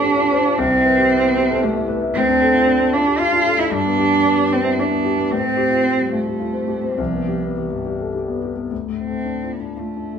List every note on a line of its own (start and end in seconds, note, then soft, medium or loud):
0.00 0.53 A2 medium
0.00 0.59 C4 medium
0.00 0.60 D4 loud
0.00 0.17 F4 medium
0.00 0.04 G4 medium
0.00 0.59 A4 medium
0.00 0.31 C5 medium
0.04 0.25 G4 medium
0.17 0.38 F4 medium
0.31 0.52 C5 medium
0.46 0.58 F4 medium
0.58 2.11 C2 medium
0.58 1.65 C4 loud
0.71 0.91 E4 medium
0.85 1.05 B4 medium
0.98 1.18 G4 medium
1.11 1.31 E4 medium
1.25 1.45 B3 medium
1.37 1.58 G4 medium
1.50 1.63 A4 medium
1.62 1.89 A3 loud
1.62 1.83 G4 medium
1.76 1.97 E4 medium
1.88 2.09 B4 medium
2.02 2.15 E4 medium
2.14 3.69 D2 medium
2.14 2.95 C4 loud
2.28 2.49 D4 medium
2.41 2.62 A4 medium
2.54 2.75 F4 medium
2.67 2.88 D4 medium
2.80 3.01 A3 medium
2.93 3.20 D4 loud
2.93 3.14 F4 medium
3.07 3.20 G4 medium
3.19 3.61 F4 loud
3.19 3.41 F4 medium
3.32 3.54 D4 medium
3.46 3.67 A4 medium
3.59 3.72 D4 medium
3.59 3.74 E4 loud
3.71 5.27 G2 medium
3.71 4.54 D4 loud
3.86 4.07 B3 medium
3.98 4.20 G4 medium
4.11 4.33 D4 medium
4.24 4.46 B3 medium
4.37 4.59 G3 medium
4.51 4.81 C4 loud
4.51 4.73 D4 medium
4.64 4.78 E4 medium
4.77 4.99 D4 medium
4.77 5.33 D4 loud
4.91 5.12 B3 medium
5.05 5.26 G4 medium
5.18 5.31 B3 medium
5.30 6.94 A2 medium
5.30 6.13 C4 loud
5.45 5.66 C4 medium
5.57 5.79 G4 medium
5.70 5.93 F4 medium
5.84 6.07 C4 medium
5.98 6.21 G3 soft
6.12 6.99 A3 medium
6.12 6.35 F4 medium
6.27 6.41 G4 soft
6.40 6.63 F4 medium
6.53 6.77 C4 medium
6.68 6.92 G4 medium
6.83 6.98 C4 medium
6.98 8.66 C2 medium
6.98 7.58 F3 loud
7.13 7.36 B3 medium
7.28 7.51 G4 medium
7.43 7.66 B3 medium
7.56 8.14 E3 medium
7.56 7.80 G3 medium
7.71 7.94 G2 soft
7.86 8.09 G4 soft
8.00 8.14 A4 soft
8.15 8.37 G4 soft
8.28 8.51 B3 soft
8.42 8.65 G4 soft
8.56 8.70 B3 soft
8.70 10.19 D2 medium
8.88 9.18 A2 soft
8.98 9.54 C4 medium
9.06 9.36 A3 soft
9.25 9.54 D4 soft
9.43 9.72 F4 soft
9.52 9.81 B3 medium
9.60 9.89 D4 soft
9.77 10.19 A3 medium
9.77 10.07 F4 soft
9.97 10.19 D4 soft
10.13 10.19 A3 soft